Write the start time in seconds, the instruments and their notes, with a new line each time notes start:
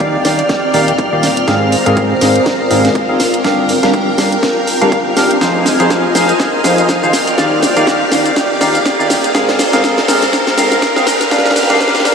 Already playing: analog synth bass D#1, synth stab D#3 D#4 G4 D5 F5, ambient pad C4 F4 A#4, string machine D5 G5 F6, riser
0.00 kick, closed hi-hat
0.25 analog synth bass D#1, synth stab D#3 D#4 G4 D5 F5, ambient pad D5, kick, snare, open hi-hat
0.39 closed hi-hat
0.49 kick, snare, closed hi-hat
0.74 analog synth bass D#1, synth stab D#3 D#4 G4 D5 F5, open hi-hat
0.88 closed hi-hat
0.98 kick, closed hi-hat
1.13 analog synth bass D#1, synth stab D#3 D#4 G4 D5 F5
1.23 snare, open hi-hat
1.37 closed hi-hat
1.48 analog synth bass G#1, synth stab G#2 C4 G#4 A#4 F5, string machine C5 A#5, kick, snare, closed hi-hat
1.72 open hi-hat
1.86 analog synth bass G#1, synth stab G#2 C4 G#4 A#4 F5, closed hi-hat
1.97 kick, closed hi-hat
2.21 analog synth bass G#1, synth stab G#2 C4 G#4 A#4 F5, snare, open hi-hat
2.36 closed hi-hat
2.46 kick, snare, closed hi-hat
2.71 analog synth bass G#1, synth stab G#2 C4 G#4 A#4 F5, open hi-hat
2.85 snare, closed hi-hat
2.95 kick, closed hi-hat
3.09 analog synth bass G#1, synth stab C4 G#4 A#4 F5
3.20 string machine A#4 G5 F6, snare, open hi-hat
3.34 closed hi-hat
3.44 analog synth bass G1, synth stab G3 D4 G4 A#4 F5, kick, snare, closed hi-hat
3.69 open hi-hat
3.83 analog synth bass G1, synth stab G3 D4 G4 A#4 F5, snare, closed hi-hat
3.94 kick, closed hi-hat
4.18 analog synth bass G1, synth stab G3 D4 G4 A#4 F5, kick, snare, open hi-hat
4.32 closed hi-hat
4.43 kick, snare, closed hi-hat
4.67 open hi-hat
4.81 analog synth bass G1, synth stab G3 D4 G4 A#4 F5, closed hi-hat
4.92 kick, closed hi-hat
5.16 analog synth bass G1, synth stab D4 G4 A#4 F5, snare, open hi-hat
5.31 closed hi-hat
5.41 analog synth bass F1, synth stab F3 D#4 G#4 C5 F5, string machine D#5 G#5 F6, kick, snare, closed hi-hat, shaker
5.66 snare, open hi-hat, shaker
5.80 analog synth bass F1, synth stab F3 D#4 G#4 C5 F5, closed hi-hat, shaker
5.90 kick, snare, closed hi-hat, shaker
6.15 analog synth bass F1, synth stab F3 D#4 G#4 C5 F5, snare, open hi-hat, shaker
6.29 closed hi-hat, shaker
6.40 kick, snare, closed hi-hat, shaker
6.64 analog synth bass F2, synth stab F3 D#4 G#4 C5 F5, snare, open hi-hat, shaker
6.78 closed hi-hat, shaker
6.89 kick, snare, closed hi-hat, shaker
7.03 analog synth bass F2, synth stab D#3 D#4 G#4 C5 F5, shaker
7.13 string machine D5 G5, snare, open hi-hat, shaker
7.27 closed hi-hat, shaker
7.38 analog synth bass D#1, synth stab D#3 D#4 G4 D5 F5, kick, snare, closed hi-hat, shaker
7.63 snare, open hi-hat, shaker
7.77 analog synth bass D#1, synth stab D#3 D#4 G4 D5 F5, closed hi-hat, shaker
7.87 kick, snare, closed hi-hat, shaker
8.04 ambient pad D5
8.12 analog synth bass D#1, synth stab D#3 D#4 G4 D5 F5, kick, snare, open hi-hat, shaker
8.26 closed hi-hat, shaker
8.36 kick, snare, closed hi-hat, shaker
8.61 analog synth bass D#1, synth stab D#3 D#4 G4 D5 F5, snare, open hi-hat, shaker
8.75 closed hi-hat, shaker
8.85 kick, snare, closed hi-hat, shaker
8.99 analog synth bass D#1, synth stab D#3 D#4 G4 D5 F5, shaker
9.10 snare, open hi-hat, shaker
9.24 closed hi-hat, shaker
9.35 analog synth bass G#1, synth stab G#2 C4 G#4 A#4 F5, string machine C5 A#5 F6, kick, snare, closed hi-hat, shaker
9.49 snare
9.59 snare, open hi-hat, shaker
9.73 analog synth bass G#1, synth stab G#2 C4 G#4 A#4 F5, snare, closed hi-hat, shaker
9.84 kick, snare, closed hi-hat, shaker
9.98 snare
10.08 analog synth bass G#1, synth stab G#2 C4 G#4 A#4 F5, snare, open hi-hat, shaker
10.22 snare, closed hi-hat, shaker
10.33 kick, snare, closed hi-hat, shaker
10.47 snare
10.58 analog synth bass G#1, synth stab G#2 C4 G#4 A#4 F5, snare, open hi-hat, shaker
10.72 snare, closed hi-hat, shaker
10.82 kick, snare, closed hi-hat, shaker
10.96 analog synth bass G#1, synth stab C4 G#4 A#4 F5, snare, shaker
11.07 string machine A#4 G5, snare, open hi-hat, shaker
11.21 snare, closed hi-hat, shaker
11.31 analog synth bass G1, synth stab G3 D4 G4 A#4 F5, kick, snare, closed hi-hat, shaker
11.38 snare
11.45 snare, shaker
11.51 snare
11.56 snare, open hi-hat, shaker
11.63 snare
11.70 analog synth bass G1, synth stab G3 D4 G4 A#4 F5, snare, closed hi-hat, shaker
11.75 snare
11.80 kick, snare, closed hi-hat, shaker
11.88 snare
11.95 snare, shaker
12.00 snare
12.05 analog synth bass G1, synth stab G3 D4 G4 A#4 F5, kick, snare, open hi-hat, shaker